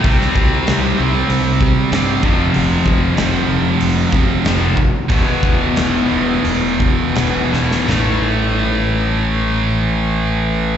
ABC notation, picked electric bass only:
X:1
M:4/4
L:1/8
Q:1/4=91
K:Am
V:1 name="Picked electric bass" clef=bass
C,, C,, C,, C,, C,,2 G,, F,,, | F,,, F,,, F,,, F,,, F,,, F,,, F,,,2 | E,,, E,,, E,,, E,,, E,,,2 E,,, E,,, | A,,,8 |]